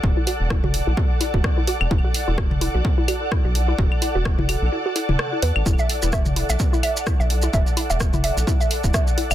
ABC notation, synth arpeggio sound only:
X:1
M:4/4
L:1/16
Q:"Swing 16ths" 1/4=128
K:Clyd
V:1 name="Synth arpeggio sound"
z E F z E F z E F z E F z E F z | E F z E F z E F z E F z E F z E | F z E F z E F z E F E E z E B z | E e z E e z E e z E e z E e z E |
e z E e z E e z E e z E e z E e |]